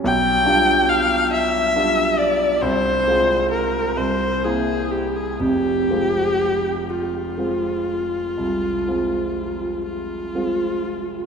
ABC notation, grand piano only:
X:1
M:12/8
L:1/8
Q:3/8=42
K:Fm
V:1 name="Grand piano"
=B,,, [G,=DF]3 [G,DF]2 C,, [A,CF]2 C,, [_B,C=E]2 | [F,,,F,,] [A,CF]3 [A,CF]2 C,, [A,CF]3 [A,CF]2 |]